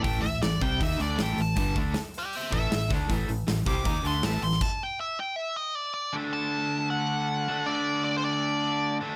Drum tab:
CC |----------------|----------------|----------------|x---------------|
HH |o-o-o-o-o-o-o-o-|o-o-o-o-o-o-o-o-|o-o-o-o-o-o-o-o-|----------------|
SD |----o-------o---|----o-------o---|----o-------o--o|----------------|
BD |o-----o-o-------|o-o-------o---o-|o-----o-o-------|o---------------|

CC |----------------|----------------|
HH |----------------|----------------|
SD |----------------|----------------|
BD |----------------|----------------|